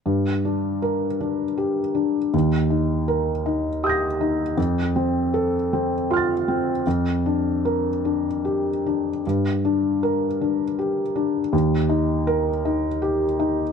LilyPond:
\new Staff \with { instrumentName = "Felt piano" } { \time 6/8 \key g \minor \tempo 4. = 53 << { r4 bes'4 r4 | r4 bes'4 <ees''' g''' bes'''>4 | r4 a'4 <c''' f''' a'''>4 | r4 bes'4 r4 |
r4 bes'4 r4 | r4 bes'4 r4 | } \\ { g,8 d'4 d'8 g'8 d'8 | ees,8 ees'4 ees'8 g'8 ees'8 | f,8 c'4 c'8 f'8 c'8 | f,8 d'4 d'8 g'8 d'8 |
g,8 d'4 d'8 g'8 d'8 | ees,8 ees'4 ees'8 g'8 ees'8 | } >> }